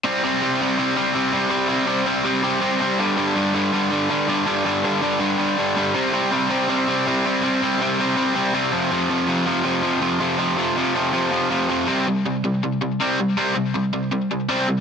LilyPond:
\new Staff \with { instrumentName = "Overdriven electric guitar" } { \clef bass \time 4/4 \key f \lydian \tempo 4 = 162 <c g c'>8 <c g c'>8 <c g c'>8 <c g c'>8 <c g c'>8 <c g c'>8 <c g c'>8 <c g c'>8 | <c g c'>8 <c g c'>8 <c g c'>8 <c g c'>8 <c g c'>8 <c g c'>8 <c g c'>8 <c g c'>8 | <g, d g>8 <g, d g>8 <g, d g>8 <g, d g>8 <g, d g>8 <g, d g>8 <g, d g>8 <g, d g>8 | <g, d g>8 <g, d g>8 <g, d g>8 <g, d g>8 <g, d g>8 <g, d g>8 <g, d g>8 <g, d g>8 |
<c g c'>8 <c g c'>8 <c g c'>8 <c g c'>8 <c g c'>8 <c g c'>8 <c g c'>8 <c g c'>8 | <c g c'>8 <c g c'>8 <c g c'>8 <c g c'>8 <c g c'>8 <c g c'>8 <c g c'>8 <f, c f>8 | <f, c f>8 <f, c f>8 <f, c f>8 <f, c f>8 <f, c f>8 <f, c f>8 <f, c f>8 <f, c f>8 | <f, c f>8 <f, c f>8 <f, c f>8 <f, c f>8 <f, c f>8 <f, c f>8 <f, c f>8 <f, c f>8 |
<c g c'>8 <c g>8 <c g>8 <c g>8 <c g>8 <c g>8 <c g c'>8 <c g>8 | <c g c'>8 <c g>8 <c g>8 <c g>8 <c g>8 <c g>8 <c g c'>8 <c g>8 | }